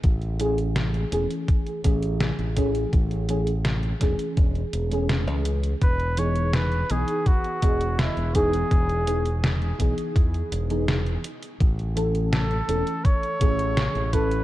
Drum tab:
HH |xxxxxxxxxxxxxxxx|xxxxxxxxxxxxxxxx|xxxxxxxxxxxxxxxx|xxxxxxxxxxxxxxxx|
SD |----o-------o---|----o-o-----o---|----o-------o---|----o-------o---|
BD |o-------o-o---o-|o-----o-o-------|o-------o-o---o-|o-----o-o-------|

HH |xxxxxxxxxxxxxxxx|
SD |----o-------o---|
BD |o-------o-o---o-|